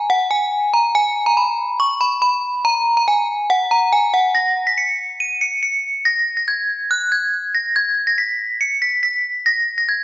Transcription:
0.10 F#5
0.31 G#5
0.73 A#5
0.95 G#5
1.26 A#5
1.37 B5
1.80 C#6
2.01 B5
2.22 B5
2.65 A#5
2.97 A#5
3.08 G#5
3.50 F#5
3.71 A#5
3.93 G#5
4.14 F#5
4.35 A#6
4.67 B6
4.78 C#7
5.20 D#7
5.41 C#7
5.63 C#7
6.05 A#6
6.37 A#6
6.48 G#6
6.91 F#6
7.12 G#6
7.54 A#6
7.76 G#6
8.07 A#6
8.18 B6
8.61 C#7
8.82 B6
9.03 B6
9.46 A#6
9.78 A#6
9.89 G#6

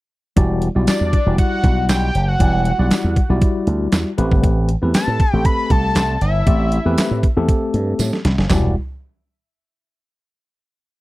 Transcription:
0.36 E1 G3 E4 F#4 D5, kick, closed hi-hat
0.62 closed hi-hat
0.75 B1 G3 E4 F#4 D5
0.87 D5, snare, clap, closed hi-hat, tambourine
1.01 E2
1.13 kick, closed hi-hat
1.26 E1 G3 E4 F#4 D5
1.38 F#5, kick, closed hi-hat
1.64 B1, kick, closed hi-hat
1.89 B1 G5, snare, clap, closed hi-hat, tambourine
2.15 F#1, closed hi-hat
2.28 F#5
2.40 E1 G3 E4 F#4 D5, kick, closed hi-hat
2.65 closed hi-hat
2.79 B1 G3 E4 F#4 D5
2.91 muted slap bass stroke, snare, clap, closed hi-hat, tambourine
3.04 E2
3.16 kick, closed hi-hat
3.29 B1 G3 E4 F#4 D5
3.42 kick, closed hi-hat
3.67 D2, closed hi-hat
3.92 E2, snare, clap, closed hi-hat, tambourine
4.18 A1 A3 C4 G4 B4, closed hi-hat
4.32 G1, kick
4.44 A1, kick, closed hi-hat
4.69 closed hi-hat
4.82 E2 A3 C4 G4 B4
4.94 A5, muted slap bass stroke, snare, clap, closed hi-hat, tambourine
5.08 A2
5.20 kick, closed hi-hat
5.33 A1 A3 C4 G4 A4 G5
5.45 B5, kick, closed hi-hat
5.70 C2 A5, kick, closed hi-hat
5.95 C2, snare, clap, closed hi-hat, tambourine
6.21 G1 E5, closed hi-hat
6.46 A1 A3 C4 G4 D5, kick, closed hi-hat
6.72 closed hi-hat
6.85 E2 A3 C4 G4 B4
6.97 muted slap bass stroke, snare, clap, closed hi-hat, tambourine
7.11 A2
7.23 kick, closed hi-hat
7.36 E2 A3 C4 G4 A4
7.49 kick, closed hi-hat
7.74 G2, closed hi-hat
7.99 A2, snare, closed hi-hat, tambourine
8.13 snare
8.25 C2, snare, closed hi-hat
8.38 F#1, snare
8.50 E1 G3 E4 F#4 D5, snare, clap, floor tom, tambourine

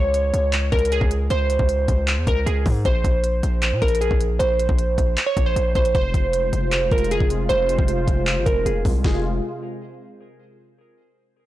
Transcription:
Already playing: C#2 C#5
0.14 closed hi-hat
0.34 C#2, closed hi-hat
0.53 clap, closed hi-hat
0.72 C#2 A#4, kick, closed hi-hat
0.79 closed hi-hat
0.85 closed hi-hat
0.92 G#4, closed hi-hat
1.01 C#2, kick
1.11 closed hi-hat
1.30 C#2 C5, closed hi-hat
1.50 closed hi-hat
1.59 C#2, kick
1.69 closed hi-hat
1.88 C#2, kick, closed hi-hat
2.08 clap, closed hi-hat
2.17 E2
2.27 C#2 A#4, kick, closed hi-hat
2.46 C#2 G#4, closed hi-hat
2.66 G#2, kick, open hi-hat
2.85 A#1 C5, kick, closed hi-hat
3.04 A#1, kick, closed hi-hat
3.24 closed hi-hat
3.43 A#1, closed hi-hat
3.62 clap, closed hi-hat
3.72 A#2
3.82 A#1 A#4, kick, closed hi-hat
3.88 closed hi-hat
3.95 closed hi-hat
4.01 G#4, closed hi-hat
4.11 A#1, kick
4.21 closed hi-hat
4.39 A#1 C5, closed hi-hat
4.60 closed hi-hat
4.69 A#1, kick
4.79 closed hi-hat
4.98 A#1, kick, closed hi-hat
5.17 clap, closed hi-hat
5.26 C#5
5.37 A#1, kick, closed hi-hat
5.46 C5
5.56 A#1, closed hi-hat
5.75 A#1 C5, kick, closed hi-hat
5.85 closed hi-hat
5.95 F1 C3 G#3 F4 C5, kick, closed hi-hat
6.14 F1, kick, closed hi-hat
6.33 closed hi-hat
6.53 F1, closed hi-hat
6.72 clap, closed hi-hat
6.91 F1 A#4, kick, closed hi-hat
6.98 closed hi-hat
7.04 closed hi-hat
7.11 G#4, closed hi-hat
7.20 F1, kick
7.30 closed hi-hat
7.49 F1 C5, closed hi-hat
7.69 closed hi-hat
7.79 F1, kick
7.88 closed hi-hat
8.08 F1, kick, closed hi-hat
8.27 clap, closed hi-hat
8.37 G1
8.46 F1 A#4, kick, closed hi-hat
8.66 F1 G#4, closed hi-hat
8.85 C2, kick, open hi-hat
9.04 F1 C3 G#3 F4 G#4, kick, snare

